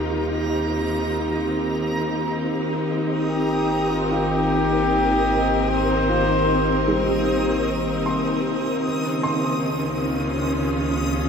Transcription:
Already playing: synth drone D#2 D#3 A#3, string section D#3 C4 D#4 F4 G4, felt piano G3 C6, synth texture A#5
2.50 synth drone G#1, synth texture D#6
3.13 string section A#4
3.30 flugelhorn G4
3.91 flugelhorn F4
4.11 felt piano F4, flugelhorn G4
5.31 felt piano D#4
5.69 flugelhorn C5
6.09 felt piano F4
6.88 felt piano G3
8.06 felt piano C6
8.84 synth drone C#2, string section C#3
8.88 string section C#4
9.23 felt piano C6
10.02 string section F4

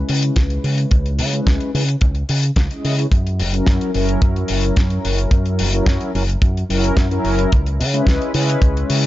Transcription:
Already playing: analog polysynth G#3 C#4 E4 B4
0.09 fingered electric bass C#3, open hi-hat
0.23 closed hi-hat
0.36 fingered electric bass C#2, kick, snare, closed hi-hat
0.50 closed hi-hat
0.64 fingered electric bass C#3, open hi-hat
0.78 closed hi-hat
0.91 fingered electric bass C#2, kick, closed hi-hat
1.06 closed hi-hat
1.19 fingered electric bass C#3, open hi-hat
1.32 analog polysynth G#3 C#4 E4 B4, closed hi-hat
1.47 fingered electric bass C#2, kick, snare, closed hi-hat
1.61 closed hi-hat
1.73 fingered electric bass C#3, analog polysynth G#3 C#4 E4 B4, open hi-hat
1.89 closed hi-hat
2.01 fingered electric bass C#2, kick, closed hi-hat
2.15 closed hi-hat
2.29 fingered electric bass C#3, open hi-hat
2.43 closed hi-hat
2.56 fingered electric bass C#2, kick, snare, closed hi-hat
2.71 analog polysynth G#3 C#4 E4 D#5, closed hi-hat
2.84 fingered electric bass C#3, open hi-hat
2.97 analog polysynth G#3 C#4 E4 B4, closed hi-hat
3.12 fingered electric bass F#2, kick, closed hi-hat
3.27 closed hi-hat
3.40 fingered electric bass F#1, open hi-hat
3.52 analog polysynth F#3 C#4 E4 A#4, closed hi-hat
3.67 fingered electric bass F#2, kick, snare, closed hi-hat
3.81 closed hi-hat
3.93 fingered electric bass F#1, analog polysynth F#3 C#4 E4 A#4, open hi-hat
4.09 closed hi-hat
4.22 fingered electric bass F#2, kick, closed hi-hat
4.36 closed hi-hat
4.48 fingered electric bass F#1, open hi-hat
4.63 closed hi-hat
4.76 fingered electric bass F#2, kick, snare, closed hi-hat
4.90 closed hi-hat
5.05 fingered electric bass F#1, open hi-hat
5.18 closed hi-hat
5.31 fingered electric bass F#2, kick, closed hi-hat
5.46 closed hi-hat
5.59 fingered electric bass F#1, open hi-hat
5.73 analog polysynth F#3 C#4 E4 A#4, closed hi-hat
5.86 fingered electric bass F#2, kick, snare, closed hi-hat
6.01 closed hi-hat
6.14 fingered electric bass F#1, analog polysynth F#3 C#4 E4 A#4, open hi-hat
6.29 closed hi-hat
6.42 fingered electric bass F#2, kick, closed hi-hat
6.57 closed hi-hat
6.69 fingered electric bass F#1, analog polysynth F#3 C#4 E4 A#4, open hi-hat
6.84 closed hi-hat
6.97 fingered electric bass F#2, kick, snare, closed hi-hat
7.11 analog polysynth F#3 C#4 E4 A#4, closed hi-hat
7.24 fingered electric bass F#1, open hi-hat
7.39 closed hi-hat
7.52 fingered electric bass C#2, kick, closed hi-hat
7.66 closed hi-hat
7.80 fingered electric bass C#3, open hi-hat
7.93 analog polysynth G#3 C#4 E4 B4, closed hi-hat
8.07 fingered electric bass C#2, kick, snare, closed hi-hat
8.22 closed hi-hat
8.33 fingered electric bass C#3, analog polysynth G#3 C#4 E4 B4, open hi-hat
8.50 closed hi-hat
8.62 fingered electric bass C#2, kick, closed hi-hat
8.77 closed hi-hat
8.90 fingered electric bass C#3, open hi-hat

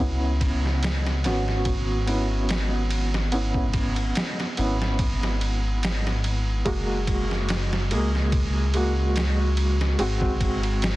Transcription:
0.00 detuned saw bass C#2, felt piano B3 C#4 E4
0.41 kick, ride
0.65 snare
0.83 snare, ride
1.07 snare
1.24 detuned saw bass G#1, felt piano B3 C#4 F#4, snare, ride
1.48 snare
1.65 kick, ride
2.06 felt piano B3 C#4 E4, ride
2.49 snare, ride
2.91 ride
3.14 snare
3.32 felt piano B3 C#4 E4, ride
3.54 kick
3.73 kick, ride
3.96 ride
4.15 snare, ride
4.40 snare
4.57 detuned saw bass G#1, felt piano B3 C#4 E4, ride
4.82 snare
4.99 kick, ride
5.23 snare
5.41 ride
5.83 snare, ride
6.07 snare
6.24 ride
6.65 detuned saw bass F#1, felt piano G#3 A#3 F#4, kick, ride
7.07 kick, ride
7.31 snare
7.49 snare, ride
7.73 snare
7.91 detuned saw bass C#2, felt piano G#3 A#3 G#4, ride
8.15 snare
8.32 kick, ride
8.74 felt piano G#3 A#3 F#4, ride
9.16 snare, ride
9.57 ride
9.81 snare
9.98 detuned saw bass G#1, felt piano G#3 C4 F#4, ride
10.21 kick
10.41 kick, ride
10.63 ride
10.82 snare, ride

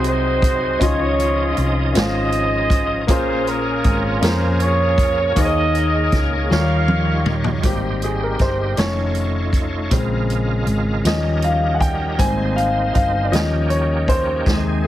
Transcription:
Already playing: fingered electric bass C2, grand piano C3 C4 F#4 G#4 D#5, tonewheel organ F#3 C4 D#4 G#4
0.04 horn section D#4 F#4 C5, closed hi-hat
0.42 kick, closed hi-hat
0.80 fingered electric bass C#2, grand piano D#3 C#4 F4 D#5 C6, tonewheel organ F3 C#4 D#4 D#5, horn section G#4 C#5, kick, closed hi-hat
0.84 horn section F4
1.20 closed hi-hat
1.57 fingered electric bass C2, closed hi-hat
1.93 fingered electric bass G#1, grand piano C#4 F4 C5 F5, horn section G#4 C5 D#5, snare, closed hi-hat
2.32 closed hi-hat
2.70 kick, closed hi-hat
3.07 fingered electric bass A#1, grand piano A#2 A#3 C#4 G#4 C5, tonewheel organ A#3 C#4 G#4 A#4, horn section F4 C5, kick, closed hi-hat
3.11 horn section G#4
3.47 horn section C#4 F4 A#4, closed hi-hat
3.84 fingered electric bass G#1, kick, closed hi-hat
4.20 fingered electric bass F2, grand piano A#3 C#4 G#4 A#4, closed hi-hat
4.24 horn section C5, snare
4.60 horn section F4 G#4 C#5, closed hi-hat
4.98 kick, closed hi-hat
5.35 fingered electric bass D#2, grand piano D#3 A#3 D#4 G#4 C5, tonewheel organ A#3 D#4 G#4 C#5, horn section G#4 A#4 D#5, kick, closed hi-hat
5.45 grand piano C#5
5.75 closed hi-hat
6.12 fingered electric bass C#2, kick, snare, closed hi-hat
6.49 fingered electric bass D#2, grand piano D#3 G3 D#4 F4 C#5, tonewheel organ G3 D#4 F4 C5, horn section A#4 C#5 F5, snare
6.57 tonewheel organ C#5
6.88 high tom
7.26 mid tom
7.44 floor tom
7.63 fingered electric bass G#1, grand piano G3 A#3 C4 G4, tonewheel organ G3 D#4 G4 B4, kick, closed hi-hat
7.71 tonewheel organ C5
8.02 grand piano G#4, closed hi-hat
8.23 grand piano A#4
8.39 fingered electric bass G1, grand piano C5, kick, snare, closed hi-hat
8.77 fingered electric bass F1, grand piano D#3 A3 C#4 C#5, tonewheel organ A3 D#4 F4 C#5, snare, closed hi-hat
9.15 closed hi-hat
9.53 kick, closed hi-hat
9.91 fingered electric bass A#1, grand piano C#3 G#3 C4, tonewheel organ G#3 C4 F4 A#4, kick, closed hi-hat
9.98 tonewheel organ C#3
10.30 closed hi-hat
10.66 fingered electric bass G#1, closed hi-hat
11.05 fingered electric bass D#2, grand piano F3 G3 C#4 D#5, tonewheel organ G3 C#4 D#4 A#4, snare, closed hi-hat
11.42 grand piano F5, closed hi-hat
11.75 grand piano F#5
11.81 grand piano G5, kick, closed hi-hat
12.18 fingered electric bass G#1, tonewheel organ D#3 C4 D#4 C5, grand piano G3 A#3 C4 G#5, kick, closed hi-hat
12.56 grand piano F5, closed hi-hat
12.94 fingered electric bass G1, grand piano F5, kick, closed hi-hat
13.25 grand piano D5
13.31 fingered electric bass D#2, tonewheel organ D#3 A#3 C#4 G4, grand piano F3 G3 C#4 D#5, snare, closed hi-hat
13.70 grand piano C#5, closed hi-hat
14.08 grand piano C5, kick, closed hi-hat
14.46 fingered electric bass D#2, grand piano C3 D#3 G#3, tonewheel organ C3 D#3 G#3 G#4, kick, snare

